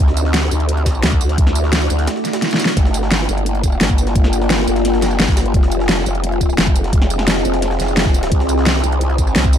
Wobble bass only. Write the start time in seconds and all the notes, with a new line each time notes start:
0.00 D2
0.51 D2
1.03 D2
1.38 D2
1.90 D2
2.77 G1
3.29 G1
3.81 G1
4.16 G1
4.68 G1
5.20 G1
5.54 F1
6.06 F1
6.58 F1
6.93 F1
7.45 F1
7.80 F1
8.32 C2
8.84 C2
9.36 C2